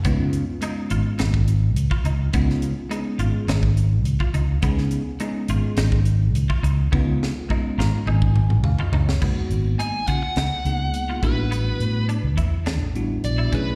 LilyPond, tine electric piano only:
\new Staff \with { instrumentName = "Tine electric piano" } { \time 4/4 \key des \mixolydian \tempo 4 = 105 << { r1 | r1 | r1 | r4. bes''8 aes''4 f''16 ees''16 des''8 |
r1 | r1 | } \\ { <aes ces' des' ees' f'>8 r8 <aes ces' des' ees' f'>4. r4. | <aes ces' des' ees' f'>8 r8 <aes ces' des' ees' aes'>4. r4. | <aes ces' des' ees' aes'>8 r8 <aes ces' des' ees' aes'>4. r4. | <aes ces' des' ees' f'>8 r8 <aes ces' des' ees' f'>4. r4. |
<aes bes ces' ees' ges'>4. r4 <aes bes ces' ees' aes'>4 <g b d' e' fis'>8~ | <g b d' e' fis'>4 r4. <g b d' e' fis'>4 <ges a des' fes' aes'>8 | } >> }